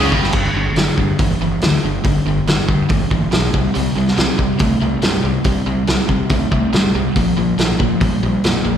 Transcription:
Already playing: fingered electric bass C#2, overdriven electric guitar C#3
0.12 fingered electric bass G1, overdriven electric guitar G2, kick
0.23 snare
0.33 fingered electric bass G1, overdriven electric guitar G2 D3, kick, crash
0.54 fingered electric bass G1, overdriven electric guitar G2 D3
0.75 fingered electric bass G1, overdriven electric guitar G2 D3, snare, open hi-hat
0.97 overdriven electric guitar G2 D3, fingered electric bass G2, kick
1.19 fingered electric bass G1, overdriven electric guitar G2 E3, kick, open hi-hat
1.40 fingered electric bass G1, overdriven electric guitar G2 E3
1.61 fingered electric bass D2, overdriven electric guitar G2 D3, snare, open hi-hat
1.83 fingered electric bass G1, overdriven electric guitar G2 D3
2.05 fingered electric bass G1, overdriven electric guitar G2 D3, kick, open hi-hat
2.25 fingered electric bass G1, overdriven electric guitar G2 D3
2.46 fingered electric bass G1, overdriven electric guitar G2 D3, snare, open hi-hat
2.68 fingered electric bass G2, overdriven electric guitar G2 D3, kick
2.89 fingered electric bass G1, overdriven electric guitar G2 E3, kick, open hi-hat
3.11 fingered electric bass G1, overdriven electric guitar G2 E3, kick
3.32 fingered electric bass B1, overdriven electric guitar G2 D3, snare, open hi-hat
3.54 fingered electric bass C2, overdriven electric guitar C3 G3, kick
3.75 fingered electric bass C2, overdriven electric guitar C3 G3, open hi-hat
3.96 fingered electric bass C2, overdriven electric guitar C3 G3
4.08 snare
4.17 fingered electric bass C2, overdriven electric guitar C3 G3, snare, open hi-hat
4.38 overdriven electric guitar C3 G3, fingered electric bass C3, kick
4.59 fingered electric bass C2, overdriven electric guitar C3 A3, kick, open hi-hat
4.81 fingered electric bass C2, overdriven electric guitar C3 A3
5.02 fingered electric bass G2, overdriven electric guitar C3 G3, snare, open hi-hat
5.23 fingered electric bass C2, overdriven electric guitar C3 G3
5.44 fingered electric bass C2, overdriven electric guitar C3 G3, kick, open hi-hat
5.66 fingered electric bass C2, overdriven electric guitar C3 G3
5.87 fingered electric bass C2, overdriven electric guitar C3 G3, snare, open hi-hat
6.09 overdriven electric guitar C3 G3, fingered electric bass C3, kick
6.29 fingered electric bass C2, overdriven electric guitar C3 A3, kick, open hi-hat
6.51 fingered electric bass C2, overdriven electric guitar C3 A3, kick
6.73 fingered electric bass G2, overdriven electric guitar C3 G3, snare, open hi-hat
6.95 fingered electric bass C2, overdriven electric guitar C3 G3
7.16 fingered electric bass A#1, overdriven electric guitar A#2 F3, kick, open hi-hat
7.37 fingered electric bass A#1, overdriven electric guitar A#2 F3
7.58 fingered electric bass A#1, overdriven electric guitar A#2 F3, snare, open hi-hat
7.79 overdriven electric guitar A#2 F3, fingered electric bass A#2, kick
8.01 fingered electric bass A#1, overdriven electric guitar A#2 G3, kick, open hi-hat
8.23 fingered electric bass A#1, overdriven electric guitar A#2 G3
8.44 fingered electric bass F2, overdriven electric guitar A#2 F3, snare, open hi-hat
8.64 fingered electric bass A#1, overdriven electric guitar A#2 F3

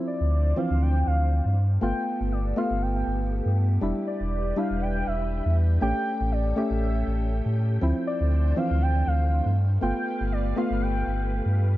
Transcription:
Already playing: synth stab F3 C4 E4, string machine D4 C5 D5
0.07 soft synth lead D5
0.21 sub bass D2
0.56 synth stab E3 F3 C4, soft synth lead F5
0.71 sub bass D2
0.82 soft synth lead G5
1.07 sub bass D2, soft synth lead F5
1.46 sub bass G2
1.57 string machine B3 G4 A4
1.81 sub bass G1, synth stab A3 B3 F4, soft synth lead G5
2.21 sub bass G1
2.32 soft synth lead D5
2.56 synth stab A3 B3 F4, soft synth lead F5
2.71 sub bass G1
2.82 soft synth lead G5
3.07 sub bass G1
3.46 sub bass G2
3.81 sub bass E1, synth stab G3 D4 E4, string machine D4 B4 G5
4.07 soft synth lead D5
4.21 sub bass E1
4.56 synth stab G3 D4 E4, soft synth lead F5
4.71 sub bass E1
4.82 soft synth lead G5
5.07 sub bass E1, soft synth lead E5
5.46 sub bass E2
5.81 sub bass A1, synth stab A3 C#4 G4, string machine C#4 A4, soft synth lead G5
6.21 sub bass A1
6.32 soft synth lead D5
6.56 synth stab A3 C#4 G4, soft synth lead E5
6.71 sub bass A1
7.07 sub bass A1
7.46 sub bass A2
7.81 sub bass D2, synth stab F3 C4 E4, string machine A3 D4 C5
8.07 soft synth lead D5
8.21 sub bass D2
8.56 synth stab E3 F3 C4, soft synth lead F5
8.71 sub bass D2
8.82 soft synth lead G5
9.07 sub bass D2, soft synth lead F5
9.46 sub bass G2
9.57 string machine A3 G4 B4 F5
9.81 sub bass G1, synth stab A3 B3 F4, soft synth lead G5
10.21 sub bass G1
10.32 soft synth lead D5
10.56 synth stab A3 B3 F4, soft synth lead F5
10.71 sub bass G1
10.82 soft synth lead G5
11.07 sub bass G1
11.46 sub bass G2

